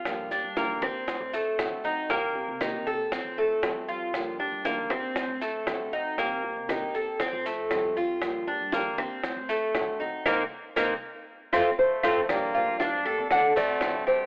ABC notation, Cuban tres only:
X:1
M:4/4
L:1/8
Q:1/4=118
K:Gm
V:1 name="Cuban tres"
F D B, C2 A,2 E | B,2 E A C A,2 F- | F D B, C2 A,2 E | B,2 E A C A,2 F- |
F D B, C2 A,2 E | [B,CE] z [B,CE] z2 [A,CF] z [A,CF] | z F D A2 C2 G |]